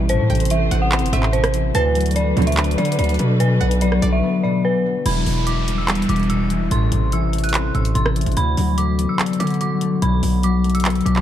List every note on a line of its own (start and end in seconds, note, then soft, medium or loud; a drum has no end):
0.00 0.21 A1 loud
0.00 0.14 E2 medium
0.00 0.14 B2 medium
0.00 0.14 E3 medium
0.00 1.71 E3 medium
0.00 0.14 G3 medium
0.00 0.71 A3 medium
0.00 0.36 B3 loud
0.09 0.35 A2 loud
0.09 1.73 C4 medium
0.09 1.73 A4 medium
0.09 1.73 C5 medium
0.09 0.48 C5 loud
0.09 closed hi-hat medium
0.19 0.29 A2 loud
0.30 0.70 A1 loud
0.30 1.18 C3 medium
0.30 0.69 G5 medium
0.30 closed hi-hat soft
0.35 closed hi-hat medium
0.40 closed hi-hat medium
0.45 closed hi-hat medium
0.50 1.38 E3 medium
0.50 0.80 E5 medium
0.50 closed hi-hat medium
0.71 1.04 A1 loud
0.71 2.16 A3 medium
0.71 1.10 F#5 medium
0.71 closed hi-hat medium
0.82 1.11 F#5 medium
0.92 2.42 C4 medium
0.92 clap loud
0.92 closed hi-hat soft
0.99 1.12 G1 loud
0.99 closed hi-hat medium
1.06 closed hi-hat medium
1.13 1.72 A1 loud
1.13 1.38 A2 medium
1.13 1.32 E5 medium
1.13 1.30 E5 medium
1.13 closed hi-hat medium
1.23 clap medium
1.33 1.80 C3 medium
1.33 1.72 C5 medium
1.33 closed hi-hat medium
1.44 cross-stick loud
1.44 closed hi-hat medium
1.54 1.80 E3 medium
1.54 closed hi-hat medium
1.75 2.34 D2 loud
1.75 2.77 D3 loud
1.75 5.02 F#3 medium
1.75 5.02 D4 medium
1.75 5.02 A4 medium
1.75 5.02 B4 medium
1.75 2.14 B4 loud
1.75 2.14 A5 loud
1.75 closed hi-hat medium
1.95 2.83 F#3 medium
1.95 closed hi-hat medium
2.01 closed hi-hat medium
2.06 closed hi-hat medium
2.11 closed hi-hat medium
2.16 3.19 A3 medium
2.16 2.45 D5 medium
2.16 closed hi-hat medium
2.36 2.76 D2 loud
2.36 2.54 B2 loud
2.36 2.54 D3 loud
2.36 2.54 F#3 loud
2.36 4.23 B3 medium
2.36 closed hi-hat medium
2.42 closed hi-hat medium
2.47 2.76 E5 medium
2.47 closed hi-hat medium
2.52 closed hi-hat medium
2.57 5.37 D4 loud
2.57 clap loud
2.57 closed hi-hat medium
2.64 closed hi-hat medium
2.71 closed hi-hat medium
2.78 2.98 D3 loud
2.78 3.45 D3 medium
2.78 2.95 D5 medium
2.78 closed hi-hat medium
2.85 closed hi-hat medium
2.92 closed hi-hat medium
2.99 3.19 D2 loud
2.99 3.45 F#3 medium
2.99 3.16 D5 medium
2.99 closed hi-hat medium
3.04 closed hi-hat medium
3.09 closed hi-hat medium
3.14 closed hi-hat soft
3.19 3.59 B2 loud
3.19 4.02 A3 medium
3.19 closed hi-hat medium
3.40 3.66 B2 loud
3.40 3.79 B4 medium
3.40 closed hi-hat medium
3.61 4.01 B1 loud
3.61 4.49 D3 medium
3.61 4.00 F#5 medium
3.61 closed hi-hat soft
3.71 closed hi-hat medium
3.81 4.69 F#3 medium
3.81 4.11 D5 medium
3.81 closed hi-hat medium
3.92 cross-stick medium
4.02 4.22 B1 loud
4.02 7.33 A3 medium
4.02 5.02 D5 medium
4.02 closed hi-hat medium
4.12 4.42 E5 medium
4.23 5.89 B3 loud
4.43 4.69 B2 medium
4.43 4.61 D5 medium
4.64 5.11 D3 medium
4.64 5.03 B4 medium
4.85 5.11 F#3 medium
5.05 5.26 E1 loud
5.05 6.08 E2 loud
5.05 5.45 B5 loud
5.05 closed hi-hat medium
5.05 crash medium
5.05 downlifter medium
5.26 6.06 E1 loud
5.26 6.29 B2 medium
5.26 open hi-hat medium
5.47 6.35 E3 medium
5.47 5.76 D6 medium
5.47 closed hi-hat medium
5.68 6.76 G3 medium
5.68 closed hi-hat medium
5.78 6.07 E6 medium
5.88 6.98 B3 loud
5.88 clap loud
5.88 closed hi-hat medium
5.95 closed hi-hat medium
6.02 closed hi-hat medium
6.09 6.69 E1 loud
6.09 6.76 E2 medium
6.09 6.26 D6 medium
6.09 closed hi-hat medium
6.16 closed hi-hat medium
6.19 closed hi-hat soft
6.23 closed hi-hat soft
6.30 6.76 B2 medium
6.30 6.47 E6 medium
6.30 closed hi-hat medium
6.50 6.76 E3 medium
6.50 closed hi-hat medium
6.71 6.91 A1 loud
6.71 6.97 A2 loud
6.71 7.10 C6 loud
6.71 closed hi-hat medium
6.92 7.71 A1 loud
6.92 7.80 C3 medium
6.92 closed hi-hat medium
7.12 8.00 E3 medium
7.12 7.42 E6 medium
7.12 closed hi-hat medium
7.33 8.78 A3 medium
7.33 closed hi-hat medium
7.38 closed hi-hat medium
7.44 7.73 F#6 medium
7.44 closed hi-hat medium
7.49 closed hi-hat medium
7.54 9.04 C4 medium
7.54 clap loud
7.54 closed hi-hat medium
7.75 7.95 A1 loud
7.75 8.00 A2 medium
7.75 7.92 E6 medium
7.75 closed hi-hat soft
7.85 closed hi-hat medium
7.95 8.25 A1 loud
7.95 8.42 C3 medium
7.95 8.34 C6 medium
7.95 closed hi-hat medium
8.06 cross-stick loud
8.16 8.42 E3 medium
8.16 closed hi-hat medium
8.21 closed hi-hat medium
8.26 8.36 A1 loud
8.26 closed hi-hat medium
8.32 closed hi-hat soft
8.37 8.57 D2 loud
8.37 9.39 D3 loud
8.37 8.76 B5 loud
8.37 closed hi-hat medium
8.57 9.07 D2 loud
8.57 9.45 F#3 medium
8.57 open hi-hat medium
8.78 9.81 A3 medium
8.78 9.07 D6 medium
8.78 closed hi-hat medium
8.98 10.85 B3 medium
8.98 closed hi-hat medium
9.09 9.38 E6 medium
9.19 11.21 D4 medium
9.19 clap loud
9.19 closed hi-hat medium
9.26 closed hi-hat medium
9.33 closed hi-hat medium
9.40 10.00 D3 loud
9.40 10.07 D3 medium
9.40 9.57 D6 medium
9.40 closed hi-hat medium
9.47 closed hi-hat medium
9.50 closed hi-hat soft
9.54 closed hi-hat soft
9.61 10.07 F#3 medium
9.61 9.78 D6 medium
9.61 closed hi-hat medium
9.81 10.64 A3 medium
9.81 closed hi-hat medium
10.02 10.22 B1 loud
10.02 10.28 B2 medium
10.02 10.41 B5 medium
10.02 closed hi-hat medium
10.23 11.02 B1 loud
10.23 11.11 D3 medium
10.23 open hi-hat medium
10.43 11.21 F#3 medium
10.43 10.73 D6 medium
10.43 closed hi-hat medium
10.64 11.21 A3 medium
10.64 closed hi-hat soft
10.70 closed hi-hat medium
10.75 11.04 E6 medium
10.75 closed hi-hat medium
10.80 closed hi-hat medium
10.85 11.21 B3 loud
10.85 clap loud
10.85 closed hi-hat medium
10.90 closed hi-hat medium
10.95 closed hi-hat medium
11.01 closed hi-hat soft
11.06 11.21 B1 loud
11.06 11.21 B2 medium
11.06 11.21 D6 medium
11.06 closed hi-hat medium
11.16 clap medium